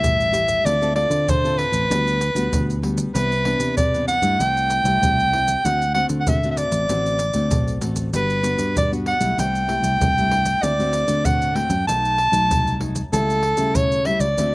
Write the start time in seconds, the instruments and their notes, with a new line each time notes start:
Already playing: nylon-string guitar A3 E4 G4, soprano saxophone E5
0.02 fingered electric bass A1, nylon-string guitar G2, pandeiro, maracas, surdo
0.20 pandeiro, maracas
0.32 nylon-string guitar A3 E4 G4, pandeiro, maracas
0.48 pandeiro, maracas, surdo
0.64 fingered electric bass D2, nylon-string guitar D3 C4 F4 A4, soprano saxophone D5, pandeiro, maracas, surdo
0.81 nylon-string guitar C4 F4 A4, pandeiro, maracas
0.95 nylon-string guitar C4 F4 A4, soprano saxophone D5, pandeiro
1.10 fingered electric bass D3, pandeiro, maracas, surdo
1.28 nylon-string guitar A2, soprano saxophone C5, pandeiro, maracas, surdo
1.44 nylon-string guitar C4 F4 A4, pandeiro, maracas
1.58 soprano saxophone B4, pandeiro
1.72 fingered electric bass A1, pandeiro, maracas, surdo
1.89 fingered electric bass D2, nylon-string guitar D3 G3 B3 F#4, pandeiro, maracas, surdo
2.07 pandeiro, maracas
2.21 pandeiro, maracas
2.35 fingered electric bass D2, nylon-string guitar G3 B3 F#4, pandeiro, maracas, surdo
2.52 fingered electric bass D2, nylon-string guitar D3, pandeiro, maracas, surdo
2.70 pandeiro, maracas
2.82 nylon-string guitar G3 B3 F#4, pandeiro
2.98 pandeiro, maracas, surdo
3.14 fingered electric bass C2, nylon-string guitar C3 E3 B3 D4, soprano saxophone B4, pandeiro, maracas, surdo
3.32 pandeiro, maracas
3.45 nylon-string guitar E3 B3 D4, pandeiro
3.59 fingered electric bass C3, pandeiro, maracas, surdo
3.77 nylon-string guitar G2, soprano saxophone D5, pandeiro, maracas, surdo
3.94 nylon-string guitar E3 B3 D4, pandeiro, maracas
4.08 soprano saxophone F#5, pandeiro, maracas
4.22 fingered electric bass G2, nylon-string guitar G3 A3 E4, pandeiro, maracas, surdo
4.39 fingered electric bass C2, nylon-string guitar C3, soprano saxophone G5, pandeiro, maracas, surdo
4.57 pandeiro, maracas
4.70 pandeiro, maracas
4.84 fingered electric bass C2, nylon-string guitar G3 A3 E4, pandeiro, maracas, surdo
5.02 fingered electric bass C2, nylon-string guitar C3, pandeiro, maracas, surdo
5.20 pandeiro, maracas
5.33 nylon-string guitar G3 A3 E4, pandeiro
5.48 pandeiro, maracas, surdo
5.65 fingered electric bass D2, nylon-string guitar D3 A3 C4 F#4, soprano saxophone F#5, pandeiro, maracas, surdo
5.82 pandeiro, maracas
5.94 nylon-string guitar A3 C4 F#4, soprano saxophone F#5, pandeiro
6.09 fingered electric bass D3, pandeiro, maracas, surdo
6.20 soprano saxophone F#5
6.27 nylon-string guitar A2 A3 C4 F#4, soprano saxophone E5, pandeiro, maracas, surdo
6.43 nylon-string guitar A3 C4 F#4, pandeiro, maracas
6.51 soprano saxophone E5
6.57 soprano saxophone D5, pandeiro, maracas
6.72 fingered electric bass A1, pandeiro, maracas, surdo
6.89 fingered electric bass A1, nylon-string guitar D3 A3 C4 F#4, pandeiro, maracas, surdo
7.06 pandeiro, maracas
7.19 pandeiro, maracas
7.33 fingered electric bass D2, nylon-string guitar A3 C4 F#4, pandeiro, maracas, surdo
7.51 fingered electric bass B1, nylon-string guitar A2, pandeiro, maracas, surdo
7.68 pandeiro, maracas
7.81 fingered electric bass A1, nylon-string guitar A3 C4 F#4, pandeiro, maracas
7.96 pandeiro, maracas, surdo
8.13 fingered electric bass G1, nylon-string guitar G3 B3 D4 F#4, soprano saxophone B4, pandeiro, maracas, surdo
8.30 pandeiro, maracas
8.42 nylon-string guitar B3 D4 F#4, pandeiro, maracas
8.59 fingered electric bass G2, pandeiro, maracas, surdo
8.75 nylon-string guitar D3, soprano saxophone D5, pandeiro, maracas, surdo
8.92 nylon-string guitar B3 D4 F#4, pandeiro, maracas
9.06 soprano saxophone F#5, pandeiro
9.20 fingered electric bass B1, nylon-string guitar G3 A3 E4, pandeiro, maracas, surdo
9.38 fingered electric bass C2, nylon-string guitar C3, soprano saxophone G5, pandeiro, maracas, surdo
9.55 pandeiro, maracas
9.68 nylon-string guitar G3 A3 E4, pandeiro
9.83 fingered electric bass C2, pandeiro, maracas, surdo
10.00 fingered electric bass C2, nylon-string guitar G2, pandeiro, maracas, surdo
10.17 nylon-string guitar G3 A3 E4, pandeiro, maracas
10.31 pandeiro
10.45 pandeiro, maracas, surdo
10.63 fingered electric bass D2, nylon-string guitar D3 A3 C4 F#4, soprano saxophone D5, pandeiro, maracas, surdo
10.79 nylon-string guitar A3 C4 F#4, pandeiro, maracas
10.93 pandeiro, maracas
11.07 fingered electric bass D3, nylon-string guitar A3 C4 F#4, pandeiro, maracas, surdo
11.24 nylon-string guitar A2, soprano saxophone F#5, pandeiro, maracas, surdo
11.42 pandeiro, maracas
11.55 nylon-string guitar A3 C4 F#4, soprano saxophone G5, pandeiro
11.70 fingered electric bass F#2, pandeiro, maracas, surdo
11.87 fingered electric bass B1, nylon-string guitar B2 F#3 A3 D#4, soprano saxophone A5, pandeiro, maracas, surdo
12.05 pandeiro, maracas
12.18 pandeiro
12.32 fingered electric bass B1, nylon-string guitar F#3 A3 D#4, pandeiro, maracas, surdo
12.50 fingered electric bass C2, nylon-string guitar F#2, pandeiro, maracas, surdo
12.67 pandeiro, maracas
12.80 nylon-string guitar F#3 A3 D#4, pandeiro
12.95 pandeiro, maracas, surdo
13.12 fingered electric bass C#2, nylon-string guitar C#3 G3 A3 E4, soprano saxophone A4, pandeiro, maracas, surdo
13.30 pandeiro, maracas
13.43 pandeiro
13.57 fingered electric bass C#3, nylon-string guitar G3 A3 E4, pandeiro, maracas, surdo
13.75 nylon-string guitar C#3, soprano saxophone C#5, pandeiro, maracas, surdo
13.92 pandeiro, maracas
14.05 nylon-string guitar G3 A3 E4, soprano saxophone E5, pandeiro
14.20 fingered electric bass C#2, soprano saxophone D5, pandeiro, maracas, surdo
14.37 fingered electric bass D2, nylon-string guitar D3 A3 C4 F#4, pandeiro, maracas, surdo